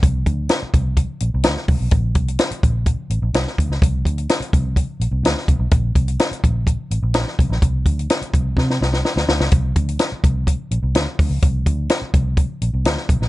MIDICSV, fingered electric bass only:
0, 0, Header, 1, 3, 480
1, 0, Start_track
1, 0, Tempo, 474684
1, 29, Time_signature, 4, 2, 24, 8
1, 13435, End_track
2, 0, Start_track
2, 0, Title_t, "Fingered electric bass"
2, 0, Program_c, 0, 33
2, 29, Note_on_c, 0, 36, 89
2, 233, Note_off_c, 0, 36, 0
2, 263, Note_on_c, 0, 38, 98
2, 470, Note_off_c, 0, 38, 0
2, 748, Note_on_c, 0, 36, 73
2, 1054, Note_off_c, 0, 36, 0
2, 1225, Note_on_c, 0, 34, 75
2, 1327, Note_off_c, 0, 34, 0
2, 1356, Note_on_c, 0, 36, 99
2, 1453, Note_off_c, 0, 36, 0
2, 1472, Note_on_c, 0, 38, 93
2, 1570, Note_off_c, 0, 38, 0
2, 1698, Note_on_c, 0, 36, 78
2, 1802, Note_off_c, 0, 36, 0
2, 1827, Note_on_c, 0, 35, 89
2, 1927, Note_off_c, 0, 35, 0
2, 1942, Note_on_c, 0, 34, 96
2, 2178, Note_off_c, 0, 34, 0
2, 2178, Note_on_c, 0, 36, 94
2, 2384, Note_off_c, 0, 36, 0
2, 2663, Note_on_c, 0, 34, 87
2, 2969, Note_off_c, 0, 34, 0
2, 3134, Note_on_c, 0, 33, 81
2, 3239, Note_off_c, 0, 33, 0
2, 3257, Note_on_c, 0, 34, 98
2, 3361, Note_off_c, 0, 34, 0
2, 3374, Note_on_c, 0, 36, 95
2, 3479, Note_off_c, 0, 36, 0
2, 3622, Note_on_c, 0, 38, 81
2, 3723, Note_off_c, 0, 38, 0
2, 3730, Note_on_c, 0, 37, 84
2, 3837, Note_off_c, 0, 37, 0
2, 3863, Note_on_c, 0, 36, 103
2, 4067, Note_off_c, 0, 36, 0
2, 4098, Note_on_c, 0, 38, 95
2, 4304, Note_off_c, 0, 38, 0
2, 4582, Note_on_c, 0, 36, 81
2, 4890, Note_off_c, 0, 36, 0
2, 5054, Note_on_c, 0, 34, 77
2, 5160, Note_off_c, 0, 34, 0
2, 5171, Note_on_c, 0, 36, 96
2, 5278, Note_off_c, 0, 36, 0
2, 5292, Note_on_c, 0, 38, 99
2, 5399, Note_off_c, 0, 38, 0
2, 5541, Note_on_c, 0, 36, 78
2, 5644, Note_off_c, 0, 36, 0
2, 5654, Note_on_c, 0, 35, 95
2, 5760, Note_off_c, 0, 35, 0
2, 5778, Note_on_c, 0, 34, 98
2, 5986, Note_off_c, 0, 34, 0
2, 6021, Note_on_c, 0, 36, 87
2, 6228, Note_off_c, 0, 36, 0
2, 6510, Note_on_c, 0, 34, 83
2, 6817, Note_off_c, 0, 34, 0
2, 6984, Note_on_c, 0, 33, 75
2, 7088, Note_off_c, 0, 33, 0
2, 7105, Note_on_c, 0, 34, 96
2, 7311, Note_off_c, 0, 34, 0
2, 7472, Note_on_c, 0, 36, 80
2, 7573, Note_off_c, 0, 36, 0
2, 7580, Note_on_c, 0, 34, 103
2, 7686, Note_off_c, 0, 34, 0
2, 7710, Note_on_c, 0, 36, 108
2, 7915, Note_off_c, 0, 36, 0
2, 7945, Note_on_c, 0, 38, 92
2, 8152, Note_off_c, 0, 38, 0
2, 8426, Note_on_c, 0, 36, 84
2, 8634, Note_off_c, 0, 36, 0
2, 8662, Note_on_c, 0, 48, 106
2, 8872, Note_off_c, 0, 48, 0
2, 8908, Note_on_c, 0, 36, 83
2, 9115, Note_off_c, 0, 36, 0
2, 9261, Note_on_c, 0, 38, 86
2, 9369, Note_off_c, 0, 38, 0
2, 9385, Note_on_c, 0, 38, 76
2, 9491, Note_off_c, 0, 38, 0
2, 9509, Note_on_c, 0, 37, 83
2, 9613, Note_off_c, 0, 37, 0
2, 9629, Note_on_c, 0, 36, 94
2, 9836, Note_off_c, 0, 36, 0
2, 9866, Note_on_c, 0, 38, 94
2, 10075, Note_off_c, 0, 38, 0
2, 10352, Note_on_c, 0, 36, 85
2, 10661, Note_off_c, 0, 36, 0
2, 10831, Note_on_c, 0, 34, 86
2, 10935, Note_off_c, 0, 34, 0
2, 10947, Note_on_c, 0, 36, 96
2, 11053, Note_off_c, 0, 36, 0
2, 11072, Note_on_c, 0, 38, 100
2, 11176, Note_off_c, 0, 38, 0
2, 11314, Note_on_c, 0, 38, 89
2, 11417, Note_off_c, 0, 38, 0
2, 11423, Note_on_c, 0, 37, 92
2, 11531, Note_off_c, 0, 37, 0
2, 11551, Note_on_c, 0, 36, 110
2, 11758, Note_off_c, 0, 36, 0
2, 11793, Note_on_c, 0, 38, 98
2, 11999, Note_off_c, 0, 38, 0
2, 12273, Note_on_c, 0, 36, 104
2, 12582, Note_off_c, 0, 36, 0
2, 12758, Note_on_c, 0, 34, 81
2, 12859, Note_off_c, 0, 34, 0
2, 12878, Note_on_c, 0, 36, 95
2, 12979, Note_off_c, 0, 36, 0
2, 12991, Note_on_c, 0, 38, 93
2, 13095, Note_off_c, 0, 38, 0
2, 13233, Note_on_c, 0, 35, 94
2, 13336, Note_off_c, 0, 35, 0
2, 13355, Note_on_c, 0, 34, 96
2, 13435, Note_off_c, 0, 34, 0
2, 13435, End_track
3, 0, Start_track
3, 0, Title_t, "Muted fingered electric bass strokes"
3, 632, Note_on_c, 9, 29, 46
3, 733, Note_off_c, 9, 29, 0
3, 2537, Note_on_c, 9, 29, 41
3, 2638, Note_off_c, 9, 29, 0
3, 4451, Note_on_c, 9, 29, 45
3, 4552, Note_off_c, 9, 29, 0
3, 6383, Note_on_c, 9, 29, 44
3, 6484, Note_off_c, 9, 29, 0
3, 8307, Note_on_c, 9, 29, 44
3, 8408, Note_off_c, 9, 29, 0
3, 10233, Note_on_c, 9, 29, 50
3, 10334, Note_off_c, 9, 29, 0
3, 12150, Note_on_c, 9, 29, 50
3, 12251, Note_off_c, 9, 29, 0
3, 13435, End_track
0, 0, End_of_file